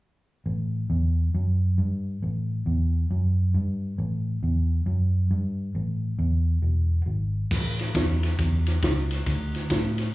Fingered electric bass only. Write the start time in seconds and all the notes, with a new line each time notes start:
0.46 A1
0.90 E2
1.34 F#2
1.78 G2
2.23 A1
2.66 E2
3.11 F#2
3.54 G2
3.98 A1
4.43 E2
4.86 F#2
5.31 G2
5.75 A1
6.19 E2
6.62 E1
7.06 G#1
7.52 A1
7.95 E2
8.39 E2
8.83 C#2
9.27 D2
9.70 A2